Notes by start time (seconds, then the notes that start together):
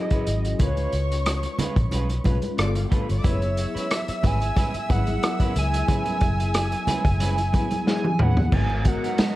Already playing: F#3 C#4 E4 F#4 D#5 E6
0.00 G#4
0.10 G#3 C#4 F#4 B4, kick, closed hi-hat, muted conga
0.27 G#1, muted clean electric guitar stroke, closed hi-hat
0.45 muted clean electric guitar stroke, closed hi-hat
0.59 C#2 G#3 C#4 F4 A#4 B4 C#5 C#6, kick, closed hi-hat, muted conga, low conga
0.67 B4
0.77 closed hi-hat, muted conga
0.92 C#2, closed hi-hat
1.11 muted clean electric guitar stroke, closed hi-hat
1.26 cross-stick, closed hi-hat
1.43 muted clean electric guitar stroke, closed hi-hat, muted conga
1.58 G#3 C#4 F4 B4, muted fingered electric bass stroke, closed hi-hat, high conga, low conga
1.76 A#1, muted clean electric guitar stroke, kick, closed hi-hat
1.91 B1 G#3 C#4 F4 B4, closed hi-hat, muted conga, high conga
2.09 muted clean electric guitar stroke, closed hi-hat, muted conga
2.24 B1 G#3 C#4 F4 B4, kick, closed hi-hat, high conga
2.42 muted clean electric guitar stroke, closed hi-hat, high conga
2.57 G1 G3 B3 F4 G#4 D5 D6, muted clean electric guitar stroke, cross-stick, closed hi-hat
2.65 A4
2.75 F4 F5, muted clean electric guitar stroke, closed hi-hat, muted conga
2.84 G4 G5
2.90 A3 D4 F4 A4 B4 A5, kick, closed hi-hat
3.00 B4 B5
3.09 G1 C#5 C#6, muted clean electric guitar stroke, closed hi-hat
3.17 D5 D6
3.23 F#1 F#3 G#3 B3 C#4 E4 G#4 B4 C#5 E5 E6, kick, closed hi-hat, low conga
3.42 closed hi-hat, muted conga
3.57 muted clean electric guitar stroke, closed hi-hat
3.75 G#3 C#4 E4 B4, muted fingered electric bass stroke, closed hi-hat
3.91 E5, cross-stick, closed hi-hat
4.08 muted clean electric guitar stroke, muted fingered electric bass stroke, closed hi-hat
4.23 G#1 G#3 C#4 E4 B4 G#5, kick, closed hi-hat, high conga, low conga
4.41 muted clean electric guitar stroke, closed hi-hat
4.56 G#3 C#4 E4 B4, kick, closed hi-hat, muted conga, high conga
4.74 muted clean electric guitar stroke, muted fingered electric bass stroke, closed hi-hat
4.88 G#1 F#3 G#3 B3 C#4 E4 G#4 B4 F#5, kick, closed hi-hat, high conga
5.07 closed hi-hat, high conga
5.21 F#3 B3 E4 A#4, muted clean electric guitar stroke, cross-stick, closed hi-hat, muted conga
5.40 G#3 C#4 E4 B4, kick, closed hi-hat, muted conga
5.55 C#2 G#5, muted clean electric guitar stroke, closed hi-hat
5.73 muted clean electric guitar stroke, closed hi-hat
5.87 F#3 G#3 B3 C#4 E4 G#4 B4, kick, closed hi-hat, muted conga, low conga
6.05 closed hi-hat, muted conga, high conga
6.21 F#1, kick, closed hi-hat
6.39 muted clean electric guitar stroke, closed hi-hat
6.54 cross-stick, closed hi-hat, muted conga
6.72 muted clean electric guitar stroke, closed hi-hat, muted conga
6.87 G#3 C#4 E4 B4, muted fingered electric bass stroke, closed hi-hat, high conga, low conga
7.05 F#1, muted clean electric guitar stroke, kick, closed hi-hat
7.20 G#3 C#4 E4 B4, closed hi-hat, muted conga, high conga
7.38 muted clean electric guitar stroke, closed hi-hat, muted conga
7.53 F#3 G#3 B3 C#4 E4 G#4 B4, kick, closed hi-hat, high conga
7.70 muted clean electric guitar stroke, closed hi-hat, high conga
7.86 F#3 B3 E4 G#4 G#5, muted clean electric guitar stroke, snare
8.04 muted clean electric guitar stroke, high tom, muted conga
8.19 D#2 G#3 C#4 E4 B4 F#5, mid tom
8.37 muted clean electric guitar stroke, floor tom
8.52 G#1 F#3 G#3 B3 D#4 F#4 A#4 D#5 G#5 A#5, kick, crash, muted conga, low conga
8.70 muted clean electric guitar stroke, muted conga
8.84 G#3 B3 F#4 A#4 F#5, muted clean electric guitar stroke, kick, closed hi-hat
9.03 F#3 B3 D#4 A#4, closed hi-hat
9.18 F#3 B3 D#4 A#4, muted fingered electric bass stroke, snare, closed hi-hat